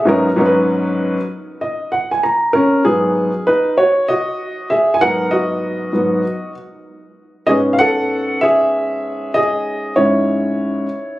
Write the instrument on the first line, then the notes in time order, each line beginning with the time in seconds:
upright piano
Already playing: G#4 E5
0.05 G#2 F#3 B3 C#4 D#4 A#4
0.36 G#2 F#3 B3 C#4 D#4 A#4
0.46 B4
1.61 D#5
1.92 F#5
2.11 G#5
2.23 A#5
2.53 C#4 A#4
2.85 G#2 F#3 B3 G#4
3.47 D#4 B4
3.78 F#4 C#5
4.08 F#4 D#5
4.70 G#4 E5
4.94 G#5
5.01 G#2 F#3 B3 A#4 F#5
5.31 F#4 D#5
5.93 G#2 F#3 B3
7.47 G#2 B3 C#4 G#4 D#5
7.73 F5
7.79 A4 F#5
8.41 G#4 E5
9.34 G#4 D#5
9.96 G#2 G#3 C#4 E4 C#5